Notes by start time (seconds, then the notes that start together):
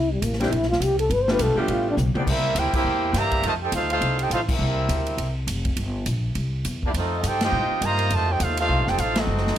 Already playing: C2 E4
0.12 G3
0.22 A1 A#3, hi-hat pedal, ride
0.33 snare
0.40 E3 G3 A#3 C4 D4 E4 G4, snare, ride
0.51 A#1 E4, ride
0.63 snare
0.70 F4, snare
0.80 C2 G4, hi-hat pedal, ride
0.99 A4, ride
1.10 G1 B4, ride
1.22 C5
1.28 G3 A3 B3 D4 F4, snare
1.32 B4
1.39 B1 A4, hi-hat pedal, ride
1.55 F3 G3 A3 B3 D4 F4 G4, muted upright bass stroke
1.60 G4
1.68 A1 F4, ride
1.90 D4
1.97 B1, hi-hat pedal, mid tom
2.15 E3 F3 A#3 B3 C4 D4 F4 G4 D5, muted upright bass stroke, mid tom
2.26 C2 G3 A#3 C4 E4 G4 A#4 E5, kick, crash
2.55 D2 A#3 E4 G4 A#4 C5 G5, hi-hat pedal, ride
2.73 A#3 E4 G4 A#4 C5 G5, muted upright bass stroke, kick, crash
2.85 E2
3.13 G2 E3 G3 A#3 G4 C5 E5 A#5, snare, hi-hat pedal, ride
3.31 kick, ride
3.42 F2 C3 D#3 A3 F4 C5 D#5 A5, ride
3.61 D#4 G4 A4 C5 G5
3.72 D2 A3 C4 D#4 F4 A4 C5 F5, hi-hat pedal, ride
3.90 A3 C4 D#4 F4 A4 C5 F5, ride
4.01 C2, ride
4.19 D#4 G4 A4 C5 G5, ride
4.30 A1 A3 C4 D#4 F4 A4 C5 F5, hi-hat pedal, ride
4.49 G3 A#3 C4 E4 G4 A#4 E5, kick, crash
4.59 C2
4.89 D2, hi-hat pedal, ride
5.07 ride
5.18 C2, ride
5.47 F1, hi-hat pedal, ride
5.65 kick, ride
5.76 G1, ride
6.06 A#1, hi-hat pedal, ride
6.35 C2, ride
6.65 E2, hi-hat pedal, ride
6.83 A#3 D4 E4 G4 D5, kick
6.94 F2 A3 C4 D#4 F4 A4 D#5, ride
7.23 G2 D#4 G4 A4 C5 G5, hi-hat pedal, ride
7.41 C4 D#4 F4 G4 C5 D#5 G5, snare, ride
7.52 A2
7.70 muted upright bass stroke
7.81 G2 C3 D#3 A#3 F4 C5 D#5 A#5, hi-hat pedal, ride
7.99 ride
8.10 F2 C3 D#3 A3 F4 C5 D#5 A5, ride
8.29 D#4 G4 A4 C5 G5
8.40 D#2 A3 C4 D#4 F4 A4 C5 F5, hi-hat pedal, ride
8.57 A3 C4 D#4 F4 A4 C5 F5, ride
8.69 C2
8.79 A1
8.87 F1 D#4 G4 A4 C5 G5, snare
8.98 A1 A3 C4 D#4 F4 A4 C5 F5, hi-hat pedal, ride
9.16 A3 C4 D#4 F#4 A4 D#5, snare, ride
9.27 F#1
9.38 snare
9.47 snare